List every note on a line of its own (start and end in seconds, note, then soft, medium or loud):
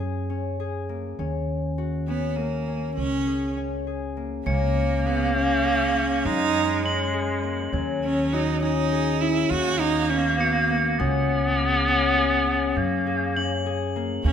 0.00 1.16 F#2 medium
0.00 0.83 A#3 medium
0.00 0.29 C#4 medium
0.00 0.59 G#4 medium
0.30 1.19 C#4 medium
0.60 2.87 G#4 medium
0.89 4.11 A#3 medium
1.19 2.94 D#2 medium
1.19 2.08 C#4 medium
1.78 4.22 F#4 medium
2.08 2.38 B3 medium
2.08 2.67 C#4 medium
2.36 2.95 A#3 medium
2.36 4.50 A#4 medium
2.68 3.56 C#4 medium
2.96 4.43 C#2 medium
2.96 3.52 C#4 medium
3.27 3.87 G#4 medium
3.57 4.45 C#4 medium
3.87 5.05 G#4 medium
4.17 7.38 A#3 medium
4.45 6.21 C#2 medium
4.45 5.08 A#3 medium
4.45 6.27 A#3 loud
4.45 5.35 C#4 medium
4.45 5.31 C#7 soft
5.06 5.36 B3 medium
5.06 5.64 G#4 medium
5.35 5.94 C#4 medium
5.35 6.27 C#4 medium
5.65 6.53 G#4 medium
5.94 6.83 C#4 medium
6.25 7.70 F#2 medium
6.25 7.74 G#3 medium
6.25 6.84 D#4 medium
6.54 7.13 G#4 medium
6.84 7.73 C#4 medium
6.84 7.69 F#7 medium
7.14 8.91 G#4 medium
7.43 10.16 A#3 medium
7.73 9.47 D#2 medium
7.73 9.24 F#3 medium
7.73 8.62 C#4 medium
8.04 8.35 C#4 medium
8.32 8.62 D#4 medium
8.32 9.80 F#4 medium
8.62 9.21 C#4 medium
8.62 9.22 D#4 medium
8.92 11.19 G#4 medium
9.21 10.99 C#4 medium
9.21 9.52 E4 medium
9.50 10.96 D#2 medium
9.50 11.01 A#3 loud
9.50 9.82 F#4 medium
9.80 10.11 D#4 medium
9.80 10.39 F#4 medium
10.10 10.76 B3 medium
10.10 10.40 C#4 medium
10.39 10.84 B3 medium
10.39 12.84 F#4 medium
10.39 11.24 C#7 medium
10.70 13.91 A#3 medium
10.99 12.73 C#2 medium
10.99 12.79 B3 loud
10.99 11.88 C#4 medium
11.58 12.17 G#4 medium
11.88 12.47 C#4 medium
12.17 13.06 G#4 medium
12.47 13.36 C#4 medium
12.76 14.22 F#2 medium
12.76 13.98 A#3 medium
13.07 13.65 G#4 medium
13.36 14.25 C#4 medium
13.36 14.20 F#7 soft
13.66 14.33 G#4 medium
13.96 14.33 A#3 medium
14.24 14.33 D#2 medium
14.24 14.33 A#3 loud
14.24 14.33 C#4 medium